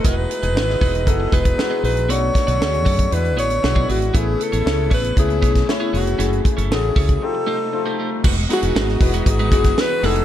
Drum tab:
CC |----------------|----------------|----------------|----------------|
HH |x-xx--oxx-xx--ox|x-xx-xoxxxxx--ox|x-xx--oxxxxx--ox|xxxx--ox--------|
SD |----oo------o---|--o-o-------o---|----o------oo---|----o-----------|
BD |o-----o-o-oo----|--o---oo-----o--|o-----o-o-oo----|--o---oo--------|

CC |x---------------|
HH |--xx--oxxxxx--ox|
SD |--o-oo-----oo---|
BD |o-----o-o-oo----|